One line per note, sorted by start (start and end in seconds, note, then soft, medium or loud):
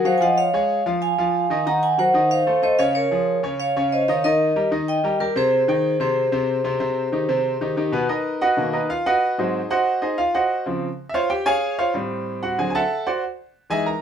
0.05 0.18 F#3 medium
0.05 0.18 F#4 medium
0.05 0.18 G#4 medium
0.05 0.17 C5 medium
0.05 0.16 F5 loud
0.18 0.47 F3 medium
0.18 0.47 F4 medium
0.18 0.47 F5 medium
0.18 0.21 G#5 medium
0.22 0.29 D#5 medium
0.22 0.29 F#5 loud
0.38 0.83 C#5 medium
0.38 0.82 F5 loud
0.53 0.80 G#3 medium
0.53 0.80 G#4 medium
0.53 0.80 C#5 medium
0.86 1.12 F3 medium
0.86 1.12 F4 medium
0.86 1.13 F5 medium
1.02 1.62 F5 medium
1.02 1.68 G#5 loud
1.18 1.44 F3 medium
1.18 1.45 F4 medium
1.18 1.45 F5 medium
1.50 1.63 D#3 medium
1.50 1.64 D#4 medium
1.50 1.64 D#5 medium
1.66 1.93 D#3 medium
1.66 1.93 D#4 medium
1.66 1.93 D#5 medium
1.66 1.82 F#5 medium
1.66 1.81 A#5 loud
1.83 1.98 F#5 medium
1.83 1.97 G#5 medium
1.98 2.11 F#3 medium
1.98 2.11 F#4 medium
1.98 2.12 A#4 medium
1.98 2.29 C5 medium
1.98 2.28 F#5 medium
2.14 2.40 D#3 medium
2.14 2.41 D#4 medium
2.14 2.41 D#5 medium
2.31 2.61 C5 medium
2.31 2.64 F5 loud
2.47 2.60 A3 medium
2.47 2.60 A4 medium
2.47 2.60 C5 medium
2.62 2.76 A3 medium
2.62 2.76 A4 medium
2.62 2.76 C5 medium
2.62 2.78 C5 medium
2.62 2.79 D#5 medium
2.79 3.05 C#3 medium
2.79 3.05 C#4 medium
2.79 3.05 C#5 medium
2.79 2.87 C#5 medium
2.79 2.86 F5 medium
2.95 3.40 A#4 medium
2.95 3.40 C#5 medium
3.11 3.37 F3 medium
3.11 3.38 F4 medium
3.11 3.38 G#4 medium
3.43 3.69 C#3 medium
3.43 3.70 C#4 medium
3.43 3.70 C#5 medium
3.60 3.90 C#5 medium
3.60 3.92 F5 loud
3.76 4.02 C#3 medium
3.76 4.02 C#4 medium
3.76 4.03 C#5 medium
3.92 4.07 C5 medium
3.92 4.07 D#5 medium
4.08 4.21 D#3 medium
4.08 4.21 D#4 medium
4.08 4.23 C#5 medium
4.08 4.22 D#5 medium
4.08 4.24 F5 medium
4.24 4.50 D#3 medium
4.24 4.51 D#4 medium
4.24 4.69 A#4 medium
4.24 4.69 D#5 medium
4.24 4.51 D#5 medium
4.56 4.69 G3 medium
4.56 4.69 G4 medium
4.56 4.69 A#4 medium
4.71 4.98 D#3 medium
4.71 4.98 D#4 medium
4.71 4.98 D#5 medium
4.88 5.18 D#5 medium
4.88 5.21 G5 loud
5.04 5.17 G3 medium
5.04 5.17 G4 medium
5.04 5.17 A#4 medium
5.20 5.33 G3 medium
5.20 5.33 G4 medium
5.20 5.28 G4 medium
5.20 5.28 A#4 medium
5.20 5.33 A#4 medium
5.36 5.62 C3 medium
5.36 5.62 C4 medium
5.36 5.97 G#4 medium
5.36 5.62 C5 medium
5.36 5.97 C5 medium
5.68 5.95 D#3 medium
5.68 5.95 D#4 medium
5.68 5.95 G5 medium
6.00 6.26 C3 medium
6.00 6.27 C4 medium
6.00 7.74 G#4 medium
6.00 6.27 C5 medium
6.00 7.73 C5 medium
6.32 6.59 C3 medium
6.32 6.59 C4 medium
6.32 6.59 C5 medium
6.64 6.78 C3 medium
6.64 6.78 C4 medium
6.64 6.78 C5 medium
6.80 7.07 C3 medium
6.80 7.07 C4 medium
6.80 7.07 C5 medium
7.12 7.26 D#3 medium
7.12 7.26 D#4 medium
7.12 7.26 G4 medium
7.29 7.55 C3 medium
7.29 7.55 C4 medium
7.29 7.55 C5 medium
7.61 7.74 D#3 medium
7.61 7.74 D#4 medium
7.61 7.74 G4 medium
7.77 7.90 D#3 medium
7.77 7.90 D#4 medium
7.77 7.90 G4 medium
7.92 8.06 B2 medium
7.92 8.06 B3 medium
7.92 8.06 B4 medium
8.09 8.39 D#4 medium
8.09 8.39 A#4 medium
8.09 8.39 B4 medium
8.09 8.39 D#5 medium
8.41 8.71 F#4 medium
8.41 8.72 B4 medium
8.41 8.71 D#5 medium
8.41 8.71 F#5 medium
8.57 8.78 B2 medium
8.57 8.79 D#3 soft
8.57 8.79 A#3 medium
8.73 8.89 D#4 medium
8.73 8.89 A#4 medium
8.73 8.89 B4 medium
8.73 8.89 D#5 medium
8.90 9.05 F4 medium
8.90 9.05 F5 medium
9.06 9.36 F#4 medium
9.06 9.36 B4 medium
9.06 9.36 D#5 medium
9.06 9.36 F#5 loud
9.38 9.59 G#2 medium
9.38 9.60 F#3 medium
9.38 9.60 C4 medium
9.38 9.68 D#4 soft
9.38 9.68 G#4 medium
9.38 9.68 C5 medium
9.38 9.68 D#5 medium
9.71 10.00 F#4 medium
9.71 10.00 C5 medium
9.71 10.00 D#5 medium
9.71 10.00 F#5 medium
10.02 10.17 D#4 medium
10.02 10.18 G#4 medium
10.02 10.18 C5 medium
10.02 10.17 D#5 medium
10.18 10.34 F4 medium
10.18 10.33 F5 medium
10.35 10.64 F#4 medium
10.35 10.64 C5 medium
10.35 10.64 D#5 medium
10.35 10.64 F#5 medium
10.66 10.87 C#3 medium
10.66 10.87 F3 medium
10.66 10.88 C4 medium
11.09 11.12 E5 medium
11.14 11.30 F4 medium
11.14 11.30 C5 medium
11.14 11.30 C#5 medium
11.14 11.30 F5 medium
11.30 11.46 G4 medium
11.30 11.45 G5 medium
11.46 11.76 G#4 medium
11.46 11.76 C#5 medium
11.46 11.76 F5 medium
11.46 11.76 G#5 loud
11.79 11.94 F4 medium
11.79 11.94 C5 medium
11.79 11.94 C#5 medium
11.79 11.94 F5 medium
11.94 12.55 A2 medium
11.94 12.55 G3 medium
11.94 12.56 C4 medium
12.43 12.58 F#4 medium
12.43 12.58 F#5 medium
12.58 12.79 D3 medium
12.58 12.80 F#3 soft
12.58 12.80 C4 medium
12.58 12.74 G#4 medium
12.58 12.69 G#5 medium
12.70 12.73 G#5 medium
12.75 13.05 A4 medium
12.75 13.05 E5 medium
12.75 13.05 F#5 medium
12.75 13.04 A5 loud
13.07 13.22 F#4 medium
13.07 13.22 C5 medium
13.07 13.22 D5 medium
13.07 13.22 F#5 medium
13.70 13.91 E3 medium
13.70 13.92 G#3 soft
13.70 13.92 D#4 medium
13.70 13.86 G#4 medium
13.70 13.86 D#5 medium
13.70 13.86 E5 medium
13.70 13.86 G#5 medium
13.86 14.02 A#4 medium
13.86 14.02 A#5 medium